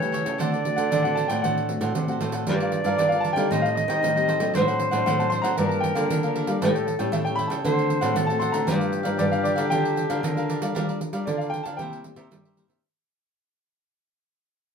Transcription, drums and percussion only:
0.02 pandeiro soft
0.14 pandeiro medium
0.26 pandeiro medium
0.40 pandeiro medium
0.54 pandeiro soft
0.65 pandeiro medium
0.78 pandeiro medium
0.92 pandeiro medium
1.05 pandeiro soft
1.17 pandeiro medium
1.30 pandeiro medium
1.44 pandeiro medium
1.57 pandeiro soft
1.69 pandeiro medium
1.81 pandeiro medium
1.95 pandeiro medium
2.08 pandeiro soft
2.21 pandeiro medium
2.32 pandeiro medium
2.47 pandeiro medium
2.60 pandeiro soft
2.72 pandeiro medium
2.85 pandeiro medium
2.99 pandeiro medium
3.12 pandeiro soft
3.24 pandeiro medium
3.37 pandeiro medium
3.52 pandeiro medium
3.66 pandeiro soft
3.77 pandeiro medium
3.90 pandeiro medium
4.04 pandeiro medium
4.17 pandeiro soft
4.29 pandeiro medium
4.40 pandeiro medium
4.55 pandeiro medium
4.68 pandeiro soft
4.80 pandeiro medium
4.93 pandeiro medium
5.07 pandeiro medium
5.20 pandeiro soft
5.32 pandeiro medium
5.44 pandeiro medium
5.58 pandeiro medium
5.71 pandeiro soft
5.84 pandeiro medium
5.96 pandeiro medium
6.10 pandeiro medium
6.23 pandeiro soft
6.36 pandeiro medium
6.47 pandeiro medium
6.62 pandeiro medium
6.76 pandeiro soft
6.88 pandeiro medium
7.00 pandeiro medium
7.13 pandeiro medium
7.27 pandeiro soft
7.39 pandeiro medium
7.51 pandeiro medium
7.65 pandeiro medium
7.79 pandeiro soft
7.90 pandeiro medium
8.02 pandeiro medium
8.16 pandeiro medium
8.30 pandeiro soft
8.42 pandeiro medium
8.54 pandeiro medium
8.68 pandeiro medium
8.81 pandeiro soft
8.93 pandeiro medium
9.05 pandeiro medium
9.19 pandeiro medium
9.33 pandeiro soft
9.45 pandeiro medium
9.58 pandeiro medium
9.72 pandeiro medium
9.85 pandeiro soft
9.97 pandeiro medium
10.10 pandeiro medium
10.24 pandeiro medium
10.37 pandeiro soft
10.50 pandeiro medium
10.62 pandeiro medium
10.76 pandeiro medium
10.89 pandeiro soft
11.01 pandeiro medium
11.13 pandeiro medium
11.27 pandeiro medium
11.41 pandeiro soft
11.54 pandeiro medium
11.65 pandeiro medium
11.79 pandeiro medium
11.93 pandeiro soft
12.04 pandeiro medium
12.16 pandeiro medium
12.32 pandeiro medium
12.45 pandeiro soft
12.57 pandeiro medium
12.70 pandeiro medium

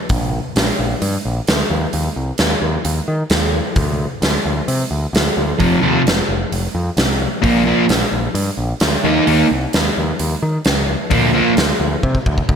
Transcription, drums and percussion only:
0.09 kick medium
0.09 open hi-hat medium
0.56 snare loud
0.56 open hi-hat medium
1.02 open hi-hat medium
1.47 snare loud
1.47 open hi-hat soft
1.93 open hi-hat soft
2.38 snare loud
2.38 open hi-hat soft
2.85 open hi-hat medium
3.30 snare loud
3.30 open hi-hat soft
3.76 kick medium
3.76 open hi-hat soft
4.22 snare medium
4.22 open hi-hat medium
4.68 open hi-hat medium
5.15 snare loud
5.15 open hi-hat medium
5.60 kick medium
5.60 open hi-hat soft
6.07 snare loud
6.07 open hi-hat medium
6.52 open hi-hat soft
6.97 snare loud
6.97 open hi-hat soft
7.44 kick medium
7.44 open hi-hat soft
7.89 snare medium
7.89 open hi-hat medium
8.35 open hi-hat medium
8.80 snare loud
8.80 open hi-hat medium
9.27 open hi-hat soft
9.73 snare loud
9.73 open hi-hat soft
10.19 open hi-hat medium
10.65 snare loud
10.65 open hi-hat soft
11.11 kick loud
11.11 open hi-hat soft
11.57 snare loud
11.57 open hi-hat soft
12.03 kick medium
12.15 kick medium
12.26 kick medium
12.38 kick medium
12.49 kick medium

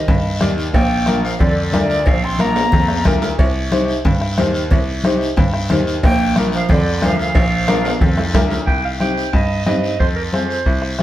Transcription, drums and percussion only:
0.08 bombo low medium
0.08 cowbell medium
0.08 high conga soft
0.08 low conga medium
0.08 long guiro medium
0.41 bombo rim medium
0.41 cowbell medium
0.41 high conga medium
0.41 short guiro medium
0.58 short guiro medium
0.74 bombo low medium
0.74 cowbell loud
0.74 high conga soft
0.74 long guiro medium
1.06 bombo rim medium
1.06 cowbell medium
1.06 high conga medium
1.06 short guiro medium
1.25 short guiro medium
1.39 bombo low medium
1.39 cowbell medium
1.39 high conga soft
1.39 low conga medium
1.39 long guiro medium
1.73 bombo rim medium
1.73 cowbell medium
1.73 high conga medium
1.73 low timbale medium
1.73 short guiro medium
1.90 short guiro medium
2.06 bombo low medium
2.06 cowbell loud
2.06 long guiro medium
2.39 bombo rim medium
2.39 cowbell medium
2.39 high conga medium
2.39 short guiro medium
2.56 high timbale loud
2.56 short guiro medium
2.72 bombo low medium
2.72 cowbell medium
2.72 high conga soft
2.72 low conga medium
2.72 long guiro medium
2.88 bombo rim medium
2.88 high timbale medium
3.05 bombo low medium
3.05 bombo rim medium
3.05 cowbell medium
3.05 high conga medium
3.05 low conga medium
3.05 short guiro medium
3.22 low timbale medium
3.22 short guiro medium
3.39 bombo low medium
3.39 cowbell loud
3.39 high conga soft
3.72 bombo rim medium
3.72 cowbell medium
3.72 high conga medium
3.72 short guiro medium
3.88 short guiro medium
4.05 bombo low medium
4.05 cowbell medium
4.05 high conga soft
4.05 low conga medium
4.05 long guiro medium
4.21 bombo rim medium
4.38 bombo rim medium
4.38 cowbell medium
4.38 high conga medium
4.38 low timbale medium
4.38 short guiro medium
4.54 short guiro medium
4.71 bombo low medium
4.71 cowbell loud
4.71 high conga soft
4.71 low conga medium
4.71 long guiro medium
5.04 bombo rim medium
5.04 cowbell medium
5.04 high conga medium
5.04 short guiro medium
5.21 short guiro medium
5.36 bombo low medium
5.36 cowbell medium
5.36 high conga soft
5.36 low conga medium
5.36 long guiro medium
5.54 bombo rim medium
5.70 bombo rim medium
5.70 cowbell medium
5.70 high conga medium
5.70 low conga medium
5.70 short guiro medium
5.87 short guiro medium
6.03 bombo low medium
6.03 cowbell loud
6.03 high conga soft
6.03 long guiro medium
6.36 bombo rim medium
6.36 cowbell medium
6.36 high conga medium
6.36 short guiro medium
6.52 short guiro medium
6.69 bombo low medium
6.69 cowbell medium
6.69 high conga soft
6.69 low conga medium
6.69 long guiro medium
7.02 bombo rim medium
7.02 cowbell medium
7.02 high conga medium
7.02 short guiro medium
7.19 short guiro medium
7.35 bombo low medium
7.35 cowbell loud
7.35 high conga soft
7.35 long guiro medium
7.68 bombo rim medium
7.68 cowbell medium
7.68 high conga medium
7.68 high timbale medium
7.68 short guiro medium
7.85 high timbale medium
7.85 short guiro medium
8.01 bombo low medium
8.01 cowbell medium
8.01 high conga soft
8.01 low conga medium
8.01 long guiro medium
8.18 bombo rim medium
8.18 low timbale medium
8.34 bombo low medium
8.34 bombo rim medium
8.34 cowbell medium
8.34 high conga medium
8.34 low timbale loud
8.34 short guiro medium
8.50 low timbale medium
8.50 short guiro medium
8.67 bombo low medium
8.67 high conga soft
8.67 long guiro medium
9.00 bombo rim medium
9.00 high conga medium
9.00 short guiro medium
9.17 short guiro medium
9.33 bombo low medium
9.33 high conga soft
9.33 long guiro medium
9.66 bombo rim medium
9.66 high conga medium
9.66 short guiro medium
9.84 short guiro medium
10.00 bombo low medium
10.00 high conga soft
10.00 long guiro medium
10.33 bombo rim medium
10.33 high conga medium
10.33 short guiro medium
10.50 short guiro medium
10.66 bombo low medium
10.66 high conga soft
10.66 long guiro medium
10.82 bombo rim medium
10.99 bombo rim medium
10.99 high conga medium
10.99 short guiro medium

